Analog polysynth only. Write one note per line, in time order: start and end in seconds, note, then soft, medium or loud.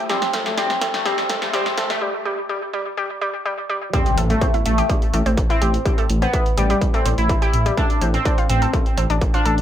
0.09 0.31 C4 loud
0.46 0.56 A3 medium
0.57 0.79 C4 loud
0.94 1.04 A3 medium
1.06 1.27 C4 loud
1.42 1.52 A3 medium
1.53 1.75 C4 loud
1.90 2.00 A3 loud
3.94 4.15 C4 loud
4.30 4.51 A3 loud
4.66 4.87 A3 loud
5.50 5.71 C4 loud
6.22 6.43 B3 loud
6.57 6.79 G3 medium
6.94 7.08 C4 medium
7.18 7.32 E4 medium
7.42 7.63 E4 loud
7.77 7.99 D4 loud
8.14 8.35 C4 loud
8.50 8.71 C4 loud
9.34 9.55 D4 loud